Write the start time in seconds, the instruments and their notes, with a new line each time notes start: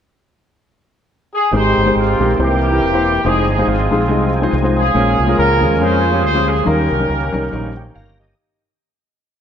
1.34 horn section G#4
1.51 fingered electric bass G#1, grand piano G#2 G#3 D#4 G4 C5, tonewheel organ D#3 G#3 C4 G4, horn section D#4 G4 C5
1.77 fingered electric bass G1
1.86 grand piano G#3 D#4 G4 C5
1.96 fingered electric bass G#1, horn section C4 F4
2.19 fingered electric bass A#1, grand piano G#3 D#4 G4 A#4
2.36 fingered electric bass C2, grand piano C3 A#3 E4 G4 C5, tonewheel organ E3 A#3 C4 G4
2.40 horn section A#3 E4 G4
2.72 grand piano A#3 E4 G4 A#4
2.81 fingered electric bass E1
2.93 grand piano A#3 E4 G4 C5
3.24 fingered electric bass F1, tonewheel organ F3 C4 D#4 G#4, grand piano G#3 D#4 F4 C5, horn section C4 D#4 G#4
3.48 fingered electric bass G1, horn section G#4
3.58 grand piano G#3 D#4 F4 C5
3.67 fingered electric bass G#1, horn section G#3 C4 F4
3.91 fingered electric bass A#1, grand piano G#3 D#4 F4 G#4
4.09 fingered electric bass C2, grand piano G#3 D#4 F4 D#5
4.42 grand piano G#3 D#4 F4 C5
4.53 fingered electric bass C2
4.63 grand piano G#3 D#4 F4 C5
4.76 horn section C#4 F4 G#4
4.94 fingered electric bass A#1, grand piano A#2 G#3 C#4 F4 A#4, tonewheel organ F3 A#3 C#4 G4
5.00 tonewheel organ G#4
5.19 fingered electric bass C2
5.27 grand piano G#3 C#4 F4 A#4
5.38 fingered electric bass C#2, horn section C#4 F4 A#4
5.61 fingered electric bass D#2, grand piano G#3 C#4 F4 A#4
5.80 fingered electric bass F2, grand piano G#3 C#4 F4 A#4, horn section F4 G#4 C5
6.12 grand piano G#3 C#4 F4 G4
6.24 fingered electric bass D2, horn section C5
6.34 grand piano G#3 C#4 F4 G4
6.49 horn section G#4
6.65 fingered electric bass D#2, grand piano D#3 G3 C#4 D#4 A#4, tonewheel organ D#3 A#3 C#4 G4, horn section C#4 G4 A#4
6.91 fingered electric bass C2
6.99 grand piano G3 C#4 D#4 A#4
7.10 fingered electric bass C#2
7.32 fingered electric bass C2, grand piano G3 C#4 D#4 A#4
7.51 fingered electric bass A#1, grand piano G3 C#4 D#4 A#4
7.77 grand piano A#4 G5
7.95 fingered electric bass G1, grand piano F5, tonewheel organ A#5
8.20 grand piano G4 D#5, tonewheel organ D#5